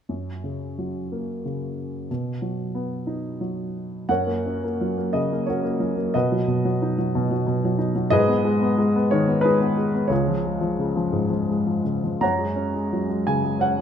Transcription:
grand piano
0.09 F#2
0.44 C#3
0.79 F#3
1.12 A#3
1.45 C#3
2.11 B2
2.42 F#3
2.75 B3
3.07 D#4
3.41 F#3
4.09 F#2 A#4 C#5 F#5
4.27 A#3
4.46 C#4
4.64 A#3
4.81 F#3
4.98 A#3
5.13 C#3 D#5
5.32 A#3
5.47 C#4 F#4 A#4 C#5
5.64 A#3
5.80 F#3
5.97 A#3
6.14 B2 F#4 B4 D#5
6.32 F#3
6.47 B2
6.65 F#3
6.82 D#4
6.98 F#3
7.15 B2
7.31 F#3
7.47 B2
7.65 F#3
7.78 D#4
7.96 F#3
8.10 G#2 G#4 B4 D#5
8.28 B3
8.45 G#3
8.62 B3
8.78 G#3
8.96 B3
9.11 D#3 C#5
9.28 B3
9.41 G#3 D#4 G#4 B4
9.61 B3
9.77 G#3
9.95 B3
10.07 C#2 G#4 C#5
10.12 F4
10.28 F3
10.45 G#3
10.61 F3
10.79 C#3
10.96 F3
11.12 G#2
11.30 F3
11.49 G#3
11.67 F3
11.85 C#3
12.04 F3
12.21 F#2 C#5 F#5 A#5
12.39 G#3
12.56 C#4
12.74 G#3
12.93 F#3
13.09 G#3
13.27 C#3 G#5
13.44 G#3
13.59 C#4 C#5 F#5
13.78 G#3

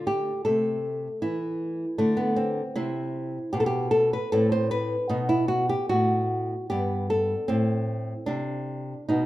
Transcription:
nylon-string guitar
Already playing: D3 A3
0.07 G4
0.45 C3 A3 A4
1.22 E3 E4
1.98 D3 A3
2.17 B3
2.36 C4
2.76 C3 C4 E4
3.53 B2 G4
3.60 A4
3.66 G4
3.91 A4
4.13 B4
4.32 A2 C4 A4
4.52 C5
4.71 B4
5.09 B2 B3 D#4
5.29 E4
5.48 F#4
5.69 G4
5.89 A2 F#4
6.70 G2 B3 G4
7.10 A4
7.48 A2 C4
8.26 C3 D4
9.09 B2 B3 D#4

